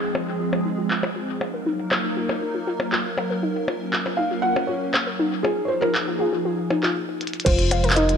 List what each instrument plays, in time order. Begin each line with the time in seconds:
Already playing: analog synth pad F3 G#3 C4 G#4
0.15 synth pluck F4, percussion blips
0.40 synth pluck F4
0.53 synth pluck F4, percussion blips
0.65 synth pluck D#4
0.78 synth pluck F4
0.91 synth pluck F4, clap
1.03 synth pluck F4, percussion blips
1.16 synth pluck F4
1.41 analog synth pad F#3 A#3 D#4 A#4, synth pluck F5, percussion blips
1.54 synth pluck A#4
1.66 synth pluck D#4
1.92 synth pluck F4, clap, percussion blips
2.17 synth pluck F4
2.29 synth pluck F4, percussion blips
2.42 synth pluck D#4
2.55 synth pluck F4
2.67 synth pluck F4
2.80 synth pluck F4, percussion blips
2.92 synth pluck F4, clap
3.18 synth pluck F5, percussion blips
3.30 synth pluck A#4
3.43 analog synth pad A#3 C#4, synth pluck D#4
3.68 synth pluck F4, percussion blips
3.93 synth pluck F4, clap
4.06 synth pluck F4, percussion blips
4.17 synth pluck D#4, felt piano F5
4.31 synth pluck F4
4.42 synth pluck F4, felt piano F#5
4.56 synth pluck F4, percussion blips
4.67 synth pluck F4, felt piano C#5
4.94 synth pluck F5, clap, percussion blips
5.07 synth pluck A#4
5.19 synth pluck D#4
5.43 analog synth pad F3 D#4 G#4, synth pluck F4, felt piano G#4, percussion blips
5.65 felt piano C5 C#5
5.70 synth pluck F4
5.81 synth pluck F4, felt piano A#4, percussion blips
5.95 synth pluck D#4, clap
6.08 synth pluck F4
6.19 synth pluck F4, felt piano G#4
6.33 synth pluck F4
6.45 synth pluck F4
6.70 synth pluck D#4, percussion blips
6.83 synth pluck F4, clap
7.21 closed hi-hat
7.27 closed hi-hat
7.33 closed hi-hat
7.40 closed hi-hat
7.45 analog synth bass F1, analog synth pad C3 F3 G#3 F4, synth pluck F4, felt piano C5, kick, closed hi-hat, crash
7.59 closed hi-hat
7.71 synth pluck F5, closed hi-hat, percussion blips
7.84 synth pluck A#4, closed hi-hat
7.90 clap
7.95 synth pluck D#4, felt piano D#5, closed hi-hat
8.09 closed hi-hat